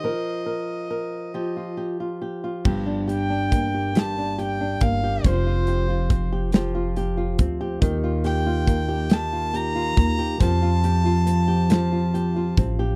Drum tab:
CC |------|x-----|------|------|
HH |------|-xxxxx|xxxxxx|xxxxxx|
SD |------|---o--|---o--|---o--|
BD |------|o-o--o|o-o--o|o-o--o|

CC |------|
HH |xxxxxx|
SD |---o--|
BD |o----o|